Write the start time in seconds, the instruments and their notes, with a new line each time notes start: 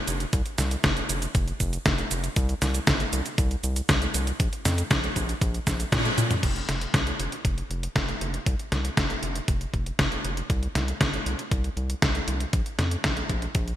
0.08 analog synth bass F1, closed hi-hat, cabasa
0.20 closed hi-hat, cabasa
0.33 analog synth bass C2, kick, closed hi-hat, cabasa
0.46 closed hi-hat, cabasa
0.58 analog synth bass C2, snare, closed hi-hat, cabasa
0.71 closed hi-hat, cabasa
0.84 analog synth bass F1, kick, snare, closed hi-hat, cabasa
0.97 closed hi-hat, cabasa
1.09 analog synth bass F1, closed hi-hat, cabasa
1.22 closed hi-hat, cabasa
1.35 analog synth bass F1, kick, closed hi-hat, cabasa
1.48 closed hi-hat, cabasa
1.60 analog synth bass F1, kick, closed hi-hat, cabasa
1.73 closed hi-hat, cabasa
1.86 analog synth bass F1, kick, snare, closed hi-hat, cabasa
1.98 closed hi-hat, cabasa
2.11 analog synth bass F1, closed hi-hat, cabasa
2.24 closed hi-hat, cabasa
2.36 analog synth bass C2, kick, closed hi-hat, cabasa
2.49 closed hi-hat, cabasa
2.62 analog synth bass C2, snare, closed hi-hat, cabasa
2.74 closed hi-hat, cabasa
2.87 analog synth bass G1, kick, snare, closed hi-hat, cabasa
3.00 closed hi-hat, cabasa
3.13 analog synth bass C2, closed hi-hat, cabasa
3.26 closed hi-hat, cabasa
3.38 analog synth bass C2, kick, closed hi-hat, cabasa
3.51 closed hi-hat, cabasa
3.64 analog synth bass C2, closed hi-hat, cabasa
3.76 closed hi-hat, cabasa
3.89 analog synth bass C2, kick, snare, closed hi-hat, cabasa
4.02 closed hi-hat, cabasa
4.14 analog synth bass C2, closed hi-hat, cabasa
4.27 closed hi-hat, cabasa
4.40 analog synth bass A#1, kick, closed hi-hat, cabasa
4.53 closed hi-hat, cabasa
4.65 analog synth bass F2, snare, closed hi-hat, cabasa
4.78 closed hi-hat, cabasa
4.91 analog synth bass A#1, kick, snare, closed hi-hat, cabasa
5.04 closed hi-hat, cabasa
5.16 analog synth bass A#1, kick, closed hi-hat, cabasa
5.29 closed hi-hat, cabasa
5.41 analog synth bass A#1, kick, closed hi-hat, cabasa
5.54 closed hi-hat, cabasa
5.67 analog synth bass A#1, kick, snare, closed hi-hat, cabasa
5.80 closed hi-hat, cabasa
5.92 analog synth bass A#2, kick, snare, closed hi-hat, cabasa
6.05 closed hi-hat, cabasa
6.18 analog synth bass A#2, closed hi-hat, high tom, cabasa
6.31 closed hi-hat, mid tom, cabasa
6.43 analog synth bass F1, kick, closed hi-hat, crash
6.56 closed hi-hat
6.69 analog synth bass F1, snare, closed hi-hat
6.81 closed hi-hat
6.94 analog synth bass C2, kick, snare, closed hi-hat
7.07 closed hi-hat
7.19 analog synth bass F1, closed hi-hat
7.32 closed hi-hat
7.45 analog synth bass F1, kick, closed hi-hat
7.58 closed hi-hat
7.70 analog synth bass F1, closed hi-hat
7.83 closed hi-hat
7.95 analog synth bass F1, kick, snare, closed hi-hat
8.09 closed hi-hat
8.21 analog synth bass F1, closed hi-hat
8.34 closed hi-hat
8.46 analog synth bass C2, kick, closed hi-hat
8.59 closed hi-hat
8.72 analog synth bass C2, snare, closed hi-hat
8.85 closed hi-hat
8.97 analog synth bass F1, kick, snare, closed hi-hat
9.10 closed hi-hat
9.23 analog synth bass F1, closed hi-hat
9.35 closed hi-hat
9.48 analog synth bass F1, kick, closed hi-hat
9.61 closed hi-hat
9.74 analog synth bass F1, kick, closed hi-hat
9.86 closed hi-hat
9.99 analog synth bass F1, kick, snare, closed hi-hat
10.12 closed hi-hat
10.24 analog synth bass F1, closed hi-hat
10.37 closed hi-hat
10.50 analog synth bass C2, kick, closed hi-hat
10.63 closed hi-hat
10.75 analog synth bass C2, snare, closed hi-hat
10.88 closed hi-hat
11.01 analog synth bass G1, kick, snare, closed hi-hat
11.13 closed hi-hat
11.26 analog synth bass C2, closed hi-hat
11.39 closed hi-hat
11.51 analog synth bass C2, kick, closed hi-hat
11.64 closed hi-hat
11.77 analog synth bass C2, closed hi-hat
11.90 closed hi-hat
12.02 analog synth bass C2, kick, snare, closed hi-hat
12.15 closed hi-hat
12.28 analog synth bass C2, closed hi-hat
12.40 closed hi-hat
12.53 analog synth bass A#1, kick, closed hi-hat
12.66 closed hi-hat
12.79 analog synth bass F2, snare, closed hi-hat
12.91 closed hi-hat
13.04 analog synth bass A#1, kick, snare, closed hi-hat
13.17 closed hi-hat
13.29 analog synth bass A#1, kick, closed hi-hat
13.42 closed hi-hat
13.55 analog synth bass A#1, kick, closed hi-hat
13.68 closed hi-hat